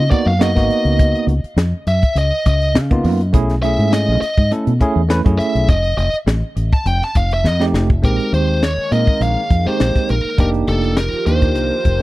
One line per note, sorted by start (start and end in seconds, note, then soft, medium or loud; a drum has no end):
0.00 0.11 C#3 medium
0.00 0.10 D#5 medium
0.10 0.31 A#3 medium
0.10 0.31 B3 medium
0.10 0.32 D#4 medium
0.10 0.32 F#4 medium
0.10 0.27 D5 medium
0.10 muted fingered electric bass stroke soft
0.10 kick medium
0.10 closed hi-hat soft
0.26 0.54 F#2 medium
0.26 0.41 F5 medium
0.39 0.51 A#3 medium
0.39 0.51 B3 medium
0.39 0.51 D#4 medium
0.39 0.51 F#4 medium
0.39 1.26 D#5 medium
0.39 snare loud
0.39 closed hi-hat medium
0.55 0.69 G#1 medium
0.55 1.32 A#3 medium
0.55 1.32 B3 medium
0.55 1.33 D#4 medium
0.55 1.33 F#4 medium
0.55 kick medium
0.55 snare soft
0.55 closed hi-hat soft
0.69 muted fingered electric bass stroke soft
0.69 closed hi-hat medium
0.85 1.13 C#2 medium
0.85 closed hi-hat soft
0.99 kick medium
0.99 closed hi-hat medium
1.15 closed hi-hat soft
1.27 1.43 C#2 medium
1.27 closed hi-hat medium
1.44 closed hi-hat soft
1.56 1.72 F2 medium
1.56 snare loud
1.56 closed hi-hat medium
1.87 2.02 F#2 medium
1.87 2.16 E5 medium
1.87 closed hi-hat medium
2.03 kick medium
2.03 closed hi-hat soft
2.15 2.31 C#2 medium
2.15 2.45 D#5 medium
2.15 closed hi-hat medium
2.46 2.76 C#2 medium
2.46 2.75 D#5 medium
2.46 kick medium
2.46 closed hi-hat medium
2.62 closed hi-hat soft
2.74 3.06 C#3 medium
2.74 snare loud
2.74 closed hi-hat medium
2.91 3.20 A#3 medium
2.91 3.20 B3 medium
2.91 3.20 D#4 medium
2.91 3.21 F4 medium
2.91 kick medium
2.91 closed hi-hat soft
3.04 3.32 F#2 loud
3.04 open hi-hat medium
3.21 closed hi-hat soft
3.33 3.76 B1 medium
3.33 3.53 A3 medium
3.33 3.54 C#4 medium
3.33 3.54 E4 medium
3.33 3.54 G#4 loud
3.33 kick loud
3.33 closed hi-hat medium
3.50 snare soft
3.50 closed hi-hat soft
3.62 4.21 A3 medium
3.62 4.21 C#4 medium
3.62 4.22 E4 medium
3.62 4.22 G#4 medium
3.62 3.91 E5 loud
3.62 closed hi-hat medium
3.79 4.10 G#2 medium
3.79 closed hi-hat soft
3.93 4.20 D#5 medium
3.93 snare loud
3.93 closed hi-hat medium
4.08 4.21 B1 medium
4.21 4.50 D#5 medium
4.21 closed hi-hat medium
4.37 4.50 G#2 medium
4.37 kick medium
4.37 closed hi-hat soft
4.51 4.71 A3 medium
4.51 4.71 C#4 medium
4.51 4.72 E4 medium
4.51 4.72 A4 medium
4.51 closed hi-hat medium
4.67 4.80 B2 medium
4.67 closed hi-hat soft
4.80 5.00 A3 medium
4.80 5.01 C#4 medium
4.80 5.01 E4 medium
4.80 5.01 G#4 loud
4.80 muted fingered electric bass stroke soft
4.80 kick medium
4.80 closed hi-hat medium
4.96 5.23 E2 medium
5.09 5.19 A3 medium
5.09 5.20 C#4 medium
5.09 5.20 E4 medium
5.09 5.20 B4 loud
5.09 snare loud
5.09 closed hi-hat medium
5.24 5.38 F#2 medium
5.24 5.68 A3 medium
5.24 5.68 C#4 medium
5.24 5.69 E4 medium
5.24 5.69 G#4 medium
5.24 kick medium
5.24 closed hi-hat soft
5.39 5.67 E5 loud
5.39 muted fingered electric bass stroke soft
5.39 closed hi-hat medium
5.55 5.68 B1 medium
5.55 closed hi-hat soft
5.68 5.96 F1 medium
5.68 5.96 D#5 medium
5.68 kick loud
5.68 closed hi-hat medium
5.84 closed hi-hat soft
5.97 6.12 F1 medium
5.97 6.15 D#5 medium
5.97 closed hi-hat medium
6.13 muted fingered electric bass stroke soft
6.13 closed hi-hat soft
6.26 6.41 A1 loud
6.26 snare loud
6.26 closed hi-hat medium
6.56 6.71 A1 medium
6.56 closed hi-hat medium
6.72 6.87 A5 medium
6.72 kick medium
6.72 closed hi-hat soft
6.85 7.00 F1 medium
6.85 7.04 G5 medium
6.85 closed hi-hat medium
7.02 7.16 A5 medium
7.02 snare soft
7.15 7.46 F1 medium
7.15 7.31 F5 medium
7.15 kick medium
7.15 closed hi-hat medium
7.31 7.47 E5 medium
7.31 closed hi-hat soft
7.44 7.75 F2 loud
7.44 7.64 D#5 medium
7.44 snare medium
7.60 7.89 A3 medium
7.60 7.89 C4 medium
7.60 7.89 D#4 medium
7.60 7.90 G4 medium
7.60 snare medium
7.74 8.01 F1 loud
7.74 snare medium
7.90 kick medium
8.02 8.18 A#1 medium
8.02 12.02 D#3 medium
8.02 8.61 G#3 medium
8.02 10.36 G#3 medium
8.02 10.36 A#3 medium
8.02 8.61 C4 medium
8.02 8.61 D#4 medium
8.02 8.62 G4 medium
8.02 8.31 A#4 medium
8.02 kick medium
8.02 closed hi-hat medium
8.20 closed hi-hat soft
8.33 8.75 D#2 medium
8.33 8.63 C5 medium
8.33 closed hi-hat medium
8.63 8.92 C#5 medium
8.63 snare medium
8.63 closed hi-hat medium
8.78 muted fingered electric bass stroke soft
8.91 9.06 A#2 medium
8.91 9.40 G#3 medium
8.91 9.40 C4 medium
8.91 9.41 D#4 medium
8.91 9.41 A#4 medium
8.91 9.22 D#5 medium
8.91 closed hi-hat medium
9.07 kick medium
9.20 9.35 A#1 medium
9.20 9.68 F5 loud
9.20 closed hi-hat medium
9.50 9.65 F2 medium
9.50 kick medium
9.50 closed hi-hat soft
9.66 10.13 G#3 medium
9.66 10.13 C4 medium
9.66 10.14 D#4 medium
9.66 10.14 G4 medium
9.66 10.10 C5 medium
9.66 muted fingered electric bass stroke soft
9.80 9.95 A#1 medium
9.80 snare loud
9.80 closed hi-hat medium
9.96 kick medium
9.96 snare soft
9.96 closed hi-hat soft
10.09 10.24 A#1 medium
10.09 10.39 A#4 medium
10.09 closed hi-hat medium
10.25 muted fingered electric bass stroke soft
10.38 10.66 F1 medium
10.38 12.02 F3 medium
10.38 10.96 A#3 medium
10.38 10.96 D4 medium
10.38 10.96 D#4 medium
10.38 10.97 G4 medium
10.38 12.02 G4 medium
10.38 12.02 A#4 medium
10.38 10.48 A#4 medium
10.38 12.02 C5 medium
10.38 kick loud
10.38 closed hi-hat medium
10.54 closed hi-hat soft
10.68 11.10 F1 medium
10.68 10.97 A4 medium
10.68 snare soft
10.68 closed hi-hat medium
10.84 closed hi-hat soft
10.97 11.26 A#4 medium
10.97 snare loud
10.97 closed hi-hat medium
11.13 muted fingered electric bass stroke soft
11.13 closed hi-hat soft
11.26 11.55 D#2 medium
11.26 11.75 A#3 medium
11.26 11.76 D4 medium
11.26 11.76 D#4 medium
11.26 11.76 G4 medium
11.26 12.02 C5 medium
11.26 closed hi-hat medium
11.42 kick medium
11.42 closed hi-hat soft
11.55 11.70 C2 medium
11.55 closed hi-hat medium
11.85 12.02 F1 medium
11.85 kick medium
11.85 closed hi-hat medium